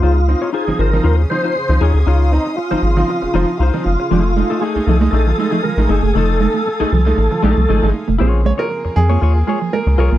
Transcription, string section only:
\new Staff \with { instrumentName = "String section" } { \time 4/4 \key des \lydian \tempo 4 = 117 << { <des' c''' ees'''>1~ | <des' c''' ees'''>1 | <a' gis'' ees'''>1~ | <a' gis'' ees'''>1 |
<f f' aes'>1 | } \\ { f''1~ | f''1~ | f''1~ | f''1 |
bes1 | } >> }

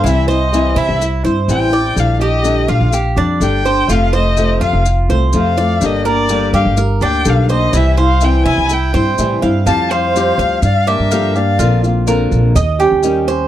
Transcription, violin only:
\new Staff \with { instrumentName = "Violin" } { \time 4/4 \key f \major \tempo 4 = 125 e''8 ees''4 e''8 r4 g''4 | f''8 ees''4 f''8 r4 g''4 | f''8 ees''4 f''8 r4 f''4 | ees''8 d''4 f''8 r8 g''8 f''8 ees''8 |
e''8 f''8 g''8 aes''8 g''4. r8 | a''8 f''4. f''8 e''4 f''8~ | f''8 r2. r8 | }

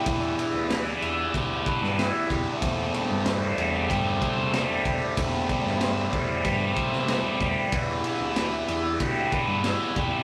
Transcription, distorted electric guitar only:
\new Staff \with { instrumentName = "Distorted electric guitar" } { \time 4/4 \key e \minor \tempo 4 = 94 <e e' g' b'>8 e'8 b'8 e'8 g'8 b'8 e'8 g'8 | e,8 g8 c''8 g8 g'8 c''8 g8 g'8 | e,8 g8 c''8 g8 g'8 c''8 g8 g'8 | e8 e'8 b'8 e'8 g'8 b'8 e'8 g'8 | }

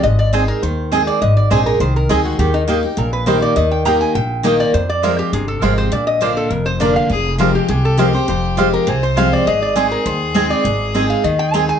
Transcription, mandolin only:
\new Staff \with { instrumentName = "Mandolin" } { \time 4/4 \key aes \lydian \tempo 4 = 203 r4 <c' aes' ees'' aes''>8 r4. <c' aes' ees'' aes''>8 r8 | r4 <c' aes' ees'' aes''>8 r4. <c' aes' ees'' aes''>8 r8 | r4 <bes g' ees'' g''>8 r4. <bes g' ees'' g''>8 r8 | r4 <bes g' ees'' g''>8 r4. <bes g' ees'' g''>8 r8 |
r4 <aes f' c'' f''>8 r4. <aes f' c'' f''>8 r8 | r4 <bes f' d'' bes''>8 r4. <bes f' d'' bes''>8 r8 | r4 <aes f' c'' f''>8 r4. <aes f' c'' f''>8 r8 | r4 <aes f' c'' f''>8 r4. <aes f' c'' f''>8 r8 |
r4 <c' aes' ees'' aes''>8 r4. <c' aes' ees'' aes''>8 r8 | r4 <c' aes' ees'' aes''>8 r4. <c' aes' ees'' aes''>8 r8 | }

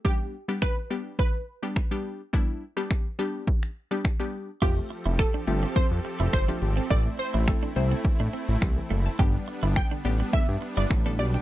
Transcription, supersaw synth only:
\new Staff \with { instrumentName = "Supersaw synth" } { \time 4/4 \key g \mixolydian \tempo 4 = 105 << { r1 | r1 | <f a'>1 | r1 |
<b d'>1 | } \\ { r1 | r1 | c'1~ | c'1 |
r1 | } >> }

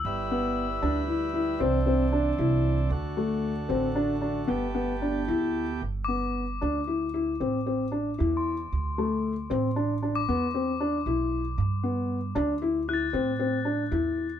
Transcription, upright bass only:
\new Staff \with { instrumentName = "Upright bass" } { \clef bass \time 11/8 \key g \major \tempo 4 = 115 g,,4. d,4. c,4. c,4 | d,4. a,,4. g,,4. d,4 | g,,4. d,4. a,,4. e,4 | d,4. a,,4. e,4. b,,4 |
g,4. d,4. a,4. e,4 | }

